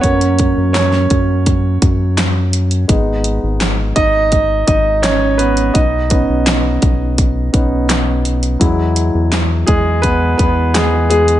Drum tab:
HH |xxx-x-x-x-x-x-xx|x-x-x-x-x-x-x-xx|x-x-x-x-x-x-x-xx|x-x-x-x-x-x-x-xx|
CP |----x-------x---|----x-------x---|----x-------x---|----x-------x---|
SD |----oo------o---|----o-------o---|----o-------o---|----o-------o---|
BD |o-o---o-o-o-----|o-----o-o-o-----|o-o---o-o-o-----|o-----o-o-o-----|